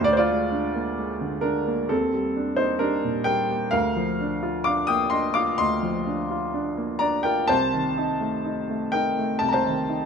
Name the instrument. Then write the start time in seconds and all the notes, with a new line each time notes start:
grand piano
0.01 D2 D5
0.13 C5
0.17 F4 D5
0.30 G#3
0.52 D4
0.75 A#3
0.98 G#3
1.21 D3
1.41 G#3 D4 A#4
1.67 A#3
1.89 D#2 C4 A4
2.14 G3
2.36 D4
2.56 A#3 D#4 C5
2.79 G3 D4 A#4
3.04 A#2
3.24 G3 A#4 G5
3.50 A#3
3.71 D2 A#4 F5
3.96 F3
4.21 D4
4.43 F4
4.64 D4 F5 D6
4.87 A#3 G5 D#6
5.10 D4 D#5 C6
5.34 F4 F5 D6
5.58 D2 D#5 C6
5.83 F3
6.07 D4
6.30 F4
6.53 D4
6.77 A#3
6.99 D4 D5 A#5
7.23 F4 A#4 G5
7.48 C2 C5 A5
7.73 D#3
7.98 D#4
8.21 A3
8.45 D#4
8.70 A3
8.92 D#4 A#4 G5
9.18 A3
9.39 C2 A5
9.48 A#5
9.53 C5 A5
9.66 D#3
9.89 D#4